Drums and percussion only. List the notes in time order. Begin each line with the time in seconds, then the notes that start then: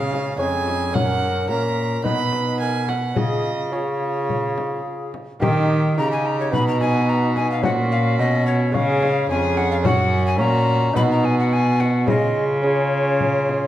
0.13 frame drum
0.68 frame drum
0.95 frame drum
2.05 frame drum
2.32 frame drum
2.88 frame drum
3.16 frame drum
4.30 frame drum
4.58 frame drum
5.14 frame drum
5.42 frame drum
6.53 frame drum
6.81 frame drum
7.36 frame drum
7.63 frame drum
8.75 frame drum
9.03 frame drum
9.57 frame drum
9.85 frame drum
10.96 frame drum
11.24 frame drum
11.80 frame drum
12.08 frame drum
13.20 frame drum
13.49 frame drum